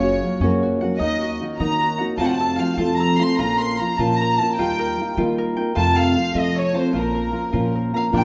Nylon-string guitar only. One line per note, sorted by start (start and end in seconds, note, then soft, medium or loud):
0.00 0.23 F#2 medium
0.00 0.23 C#3 medium
0.00 0.24 F#3 medium
0.00 0.25 A#3 medium
0.00 0.24 C#4 medium
0.00 0.26 F#4 medium
0.24 0.42 F#3 medium
0.24 0.42 A#3 soft
0.24 0.43 C#4 medium
0.24 0.42 F#4 soft
0.43 0.83 F#2 medium
0.43 0.83 C#3 medium
0.43 0.83 F#3 medium
0.43 0.82 A#3 medium
0.43 0.82 C#4 medium
0.43 0.81 F#4 medium
0.82 1.00 F#3 soft
0.82 0.99 A#3 medium
0.82 0.99 C#4 soft
0.82 1.00 F#4 medium
1.00 1.40 D#3 medium
1.00 1.40 A#3 medium
1.00 1.40 D#4 medium
1.00 1.41 F#4 medium
1.41 1.60 D#3 medium
1.41 1.59 A#3 soft
1.41 1.60 D#4 medium
1.41 1.59 F#4 medium
1.60 2.00 D#3 soft
1.60 2.00 A#3 medium
1.60 2.00 D#4 medium
1.60 1.99 F#4 medium
2.01 2.20 A#3 soft
2.01 2.20 D#4 soft
2.01 2.19 F#4 medium
2.20 2.60 F2 medium
2.20 2.60 C3 medium
2.20 2.59 F3 medium
2.20 2.59 A3 medium
2.20 2.60 C4 medium
2.20 2.61 F4 medium
2.60 2.79 F3 medium
2.60 2.78 A3 medium
2.60 2.79 C4 soft
2.60 2.79 F4 medium
2.79 3.20 F2 medium
2.79 3.21 C3 soft
2.79 3.21 F3 soft
2.79 3.19 A3 medium
2.79 3.19 C4 soft
2.79 3.19 F4 medium
3.19 3.38 F3 soft
3.19 3.39 A3 soft
3.19 3.39 C4 soft
3.19 3.38 F4 soft
3.39 3.80 A#2 medium
3.39 3.79 F3 medium
3.39 3.80 A#3 medium
3.39 3.79 C#4 medium
3.39 3.81 F4 medium
3.79 3.99 F3 soft
3.79 3.99 A#3 soft
3.79 3.98 C#4 medium
3.79 3.98 F4 medium
3.99 4.40 A#2 soft
3.99 4.59 F3 medium
3.99 4.40 A#3 soft
3.99 4.40 C#4 medium
3.99 4.40 F4 medium
4.41 4.58 A#3 soft
4.41 4.59 C#4 soft
4.41 4.58 F4 medium
4.59 4.99 D#3 medium
4.59 4.98 G3 medium
4.59 4.99 A#3 medium
4.59 4.99 D#4 medium
4.59 5.00 F4 medium
4.99 5.18 G3 soft
4.99 5.18 A#3 medium
4.99 5.17 D#4 medium
4.99 5.17 F4 medium
5.18 5.58 D#3 medium
5.18 5.58 G3 medium
5.18 5.58 A#3 medium
5.18 5.57 D#4 medium
5.18 5.57 F4 medium
5.57 5.75 A#3 soft
5.57 5.76 D#4 soft
5.57 5.74 F4 medium
5.75 6.15 F2 medium
5.75 6.15 C3 medium
5.75 6.16 F3 medium
5.75 6.16 A3 medium
5.75 6.16 C4 medium
5.75 6.17 F4 medium
6.16 6.33 F3 soft
6.16 6.34 A3 medium
6.16 6.33 C4 soft
6.16 6.33 F4 medium
6.34 6.75 F2 soft
6.34 6.75 C3 medium
6.34 6.76 F3 medium
6.34 6.74 A3 soft
6.34 6.74 C4 soft
6.34 6.74 F4 soft
6.74 6.92 F3 soft
6.74 6.93 A3 soft
6.74 6.93 C4 soft
6.74 6.93 F4 soft
6.93 7.34 A#2 medium
6.93 7.32 F3 medium
6.93 7.32 A#3 medium
6.93 7.31 C#4 medium
6.93 7.33 F4 medium
7.32 7.52 F3 soft
7.32 7.52 A#3 soft
7.32 7.52 C#4 soft
7.32 7.52 F4 medium
7.53 7.95 A#2 medium
7.53 8.12 F3 soft
7.53 7.93 A#3 soft
7.53 7.93 C#4 medium
7.53 7.93 F4 medium
7.93 8.11 A#3 soft
7.93 8.13 C#4 soft
7.93 8.12 F4 medium
8.12 8.24 A#2 medium
8.12 8.24 F3 medium
8.12 8.24 A#3 medium
8.12 8.24 D4 medium
8.12 8.24 F4 medium